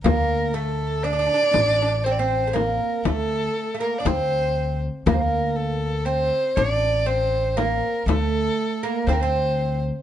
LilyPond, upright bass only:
\new Staff \with { instrumentName = "Upright bass" } { \clef bass \time 10/8 \tempo 4 = 60 d,4. a,,4. d,8 r8 d,4 | d,4. a,,4. d,8 r8 d,4 | }